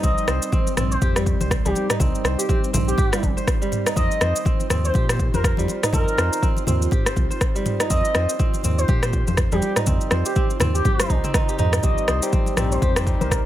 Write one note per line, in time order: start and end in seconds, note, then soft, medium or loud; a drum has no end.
0.00 0.15 C2 loud
0.00 1.15 G3 medium
0.00 3.93 G3 medium
0.00 3.93 C4 medium
0.00 0.52 C4 medium
0.00 1.56 D#4 medium
0.00 11.79 D#4 medium
0.00 0.46 G4 medium
0.00 0.28 C5 medium
0.00 3.93 C5 medium
0.00 0.42 D#5 medium
0.00 kick loud
0.00 high conga medium
0.00 shaker loud
0.18 shaker medium
0.28 0.40 C2 medium
0.28 1.40 C5 medium
0.28 cross-stick medium
0.28 muted conga medium
0.28 shaker medium
0.42 shaker medium
0.52 0.77 C4 medium
0.52 kick loud
0.52 high conga medium
0.52 shaker medium
0.67 muted conga soft
0.67 shaker medium
0.77 0.98 A#1 medium
0.77 1.99 C4 medium
0.77 cross-stick medium
0.77 mid tom medium
0.77 high conga medium
0.77 shaker loud
0.91 0.98 C5 medium
0.91 shaker medium
1.02 1.37 F2 loud
1.02 2.43 G4 medium
1.02 1.11 C5 medium
1.02 kick loud
1.02 muted conga medium
1.02 high conga medium
1.02 shaker medium
1.16 1.64 G3 medium
1.16 cross-stick medium
1.16 shaker medium
1.26 kick medium
1.26 shaker medium
1.41 1.60 C2 medium
1.41 2.24 C5 medium
1.41 muted conga soft
1.41 high conga medium
1.41 shaker medium
1.51 kick loud
1.51 cross-stick medium
1.51 shaker loud
1.65 1.74 C2 loud
1.65 3.11 G3 medium
1.65 1.86 G4 medium
1.65 high conga medium
1.65 shaker medium
1.75 muted conga medium
1.75 shaker medium
1.90 3.52 D#4 medium
1.90 cross-stick loud
1.90 mid tom medium
1.90 shaker loud
2.00 2.12 C2 loud
2.00 2.48 C4 medium
2.00 kick loud
2.00 high conga medium
2.00 low conga medium
2.00 shaker loud
2.15 shaker medium
2.24 2.36 C2 medium
2.24 3.36 C5 medium
2.24 cross-stick medium
2.24 muted conga soft
2.24 shaker medium
2.38 2.45 G4 medium
2.38 shaker loud
2.48 2.73 C4 medium
2.48 2.58 G4 medium
2.48 kick loud
2.48 high conga medium
2.48 shaker medium
2.64 muted conga soft
2.64 shaker medium
2.73 2.95 A#1 medium
2.73 3.96 C4 medium
2.73 mid tom medium
2.73 high conga medium
2.73 low conga medium
2.73 shaker medium
2.88 3.23 G4 medium
2.88 shaker medium
2.98 4.39 G4 medium
2.98 kick loud
2.98 mid tom medium
2.98 muted conga soft
2.98 shaker medium
3.12 3.60 G3 medium
3.12 cross-stick medium
3.12 shaker medium
3.23 3.35 G1 medium
3.23 kick medium
3.23 high conga medium
3.23 shaker medium
3.37 4.20 C5 medium
3.37 muted conga soft
3.37 shaker medium
3.47 kick loud
3.47 cross-stick medium
3.47 shaker loud
3.62 4.02 G3 medium
3.62 shaker medium
3.72 mid tom medium
3.72 muted conga soft
3.72 shaker medium
3.86 5.48 D#4 medium
3.86 cross-stick loud
3.86 shaker loud
3.96 4.08 F2 loud
3.96 4.45 C4 medium
3.96 11.79 F4 medium
3.96 13.46 C5 medium
3.96 4.35 D#5 medium
3.96 kick loud
3.96 high conga medium
3.96 shaker loud
4.11 shaker medium
4.21 4.33 F2 medium
4.21 5.09 C5 medium
4.21 cross-stick medium
4.21 muted conga medium
4.21 shaker soft
4.36 shaker medium
4.45 4.70 C4 medium
4.45 kick loud
4.45 high conga medium
4.45 shaker medium
4.60 muted conga soft
4.60 shaker medium
4.70 4.92 D#2 medium
4.70 5.93 C4 medium
4.70 cross-stick medium
4.70 mid tom medium
4.70 high conga medium
4.70 shaker medium
4.85 4.91 C5 medium
4.85 shaker medium
4.94 5.30 A#2 loud
4.94 6.36 G4 medium
4.94 5.04 C5 medium
4.94 kick loud
4.94 muted conga soft
4.94 high conga medium
4.94 shaker medium
5.09 5.33 C5 medium
5.09 cross-stick medium
5.09 shaker medium
5.20 kick medium
5.20 shaker medium
5.34 5.54 F2 medium
5.34 5.41 A#4 medium
5.34 6.17 C5 medium
5.34 muted conga soft
5.34 high conga medium
5.34 shaker medium
5.44 5.53 A#4 medium
5.44 kick loud
5.44 cross-stick medium
5.44 shaker medium
5.57 5.67 F2 loud
5.57 7.54 G3 medium
5.57 high conga medium
5.57 shaker medium
5.68 muted conga medium
5.68 shaker medium
5.83 7.45 D#4 medium
5.83 cross-stick medium
5.83 mid tom medium
5.83 shaker medium
5.93 6.05 F2 loud
5.93 6.42 C4 medium
5.93 6.43 A#4 loud
5.93 kick loud
5.93 high conga medium
5.93 low conga medium
5.93 shaker medium
6.08 shaker medium
6.18 6.30 F2 medium
6.18 7.05 C5 medium
6.18 cross-stick medium
6.18 muted conga medium
6.18 shaker soft
6.33 shaker medium
6.42 6.67 C4 medium
6.42 kick loud
6.42 high conga medium
6.42 shaker soft
6.57 muted conga soft
6.57 shaker medium
6.67 6.88 D#2 medium
6.67 7.90 C4 medium
6.67 mid tom medium
6.67 high conga medium
6.67 low conga medium
6.67 shaker medium
6.82 shaker medium
6.91 8.33 G4 medium
6.91 kick loud
6.91 mid tom medium
6.91 muted conga medium
6.91 shaker medium
7.06 7.30 C5 medium
7.06 cross-stick medium
7.06 shaker medium
7.16 7.28 C2 medium
7.16 kick medium
7.16 high conga medium
7.16 shaker medium
7.30 8.14 C5 medium
7.30 muted conga soft
7.30 shaker medium
7.41 kick loud
7.41 cross-stick medium
7.41 shaker medium
7.55 9.51 G3 medium
7.55 shaker medium
7.66 mid tom medium
7.66 muted conga medium
7.66 shaker medium
7.80 9.42 D#4 medium
7.80 cross-stick medium
7.80 shaker medium
7.90 8.02 F2 loud
7.90 8.39 C4 medium
7.90 8.29 D#5 medium
7.90 kick loud
7.90 high conga medium
7.90 shaker loud
8.05 shaker medium
8.15 8.27 F2 medium
8.15 9.03 C5 medium
8.15 cross-stick medium
8.15 muted conga medium
8.15 shaker soft
8.29 shaker medium
8.39 8.64 C4 medium
8.39 kick loud
8.39 high conga medium
8.39 shaker medium
8.54 muted conga soft
8.54 shaker soft
8.63 8.85 D#2 medium
8.63 9.86 C4 medium
8.63 mid tom medium
8.63 high conga medium
8.63 shaker medium
8.78 8.85 C5 medium
8.78 shaker medium
8.88 9.24 A#2 loud
8.88 10.30 G4 medium
8.88 8.98 C5 medium
8.88 kick loud
8.88 muted conga soft
8.88 high conga medium
8.88 shaker soft
9.03 9.27 C5 medium
9.03 cross-stick medium
9.03 shaker medium
9.13 kick medium
9.13 shaker soft
9.27 9.47 F2 medium
9.27 10.11 C5 medium
9.27 muted conga soft
9.27 high conga medium
9.27 shaker medium
9.37 kick loud
9.37 cross-stick medium
9.37 shaker medium
9.52 9.61 F2 loud
9.52 11.86 G3 medium
9.52 9.72 G4 medium
9.52 high conga medium
9.52 shaker medium
9.62 muted conga medium
9.62 shaker medium
9.76 11.09 D#4 medium
9.76 cross-stick medium
9.76 mid tom loud
9.76 shaker loud
9.86 9.99 F2 loud
9.86 10.36 C4 medium
9.86 kick loud
9.86 high conga medium
9.86 low conga medium
9.86 shaker medium
10.01 shaker soft
10.11 10.23 F2 medium
10.11 10.99 C5 medium
10.11 cross-stick medium
10.11 muted conga medium
10.11 shaker soft
10.25 10.32 G4 medium
10.25 shaker medium
10.35 10.60 C4 medium
10.35 10.45 G4 medium
10.35 kick loud
10.35 high conga medium
10.35 shaker soft
10.50 muted conga soft
10.50 shaker medium
10.60 10.82 D#2 medium
10.60 11.24 C4 medium
10.60 cross-stick medium
10.60 mid tom medium
10.60 high conga medium
10.60 low conga medium
10.60 shaker medium
10.74 11.09 G4 medium
10.74 shaker medium
10.85 11.48 G4 medium
10.85 kick loud
10.85 mid tom loud
10.85 high tom medium
10.85 muted conga medium
10.85 shaker medium
11.00 12.08 C5 medium
11.00 cross-stick medium
11.00 high tom medium
11.00 shaker medium
11.10 11.22 C2 medium
11.10 11.34 D#4 medium
11.10 kick medium
11.10 high conga medium
11.10 shaker soft
11.24 11.83 C4 loud
11.24 mid tom medium
11.24 muted conga soft
11.24 shaker medium
11.34 11.58 D#4 loud
11.34 kick loud
11.34 cross-stick medium
11.34 mid tom medium
11.34 shaker medium
11.49 12.81 G4 medium
11.49 shaker medium
11.59 11.80 F2 medium
11.59 13.21 D#4 loud
11.59 mid tom medium
11.59 muted conga medium
11.59 shaker medium
11.73 cross-stick medium
11.73 mid tom medium
11.73 shaker medium
11.83 11.95 C2 loud
11.83 13.46 G3 medium
11.83 12.19 G3 loud
11.83 13.46 C4 medium
11.83 12.19 C4 medium
11.83 12.32 C4 medium
11.83 13.46 D#4 medium
11.83 12.19 D#4 medium
11.83 12.19 G4 loud
11.83 12.22 D#5 medium
11.83 kick loud
11.83 high conga medium
11.83 shaker loud
11.98 shaker medium
12.08 12.20 C2 medium
12.08 12.96 C5 medium
12.08 cross-stick loud
12.08 muted conga medium
12.08 shaker medium
12.23 12.55 G3 medium
12.23 12.55 C4 medium
12.23 12.55 D#4 medium
12.23 12.55 G4 loud
12.23 shaker medium
12.33 12.57 C4 medium
12.33 kick loud
12.33 high conga medium
12.33 shaker medium
12.46 muted conga soft
12.46 shaker medium
12.57 12.79 A#1 medium
12.57 12.93 G3 medium
12.57 13.46 C4 medium
12.57 12.93 C4 medium
12.57 12.93 D#4 medium
12.57 12.93 G4 medium
12.57 cross-stick medium
12.57 mid tom medium
12.57 high conga medium
12.57 shaker medium
12.71 12.78 C5 medium
12.71 shaker medium
12.81 13.17 F2 loud
12.81 13.46 G4 medium
12.81 12.91 C5 medium
12.81 kick loud
12.81 muted conga medium
12.81 high conga medium
12.81 shaker medium
12.96 13.05 G3 medium
12.96 13.05 C4 medium
12.96 13.05 D#4 medium
12.96 13.04 G4 medium
12.96 13.21 C5 medium
12.96 cross-stick loud
12.96 shaker medium
13.06 13.42 G3 medium
13.06 13.42 C4 medium
13.06 13.42 D#4 medium
13.06 13.42 G4 loud
13.06 kick medium
13.06 shaker medium
13.20 13.41 C2 medium
13.20 13.27 A#4 medium
13.20 13.46 C5 medium
13.20 muted conga soft
13.20 high conga medium
13.20 shaker medium
13.30 13.40 A#4 medium
13.30 kick loud
13.30 cross-stick medium
13.30 shaker loud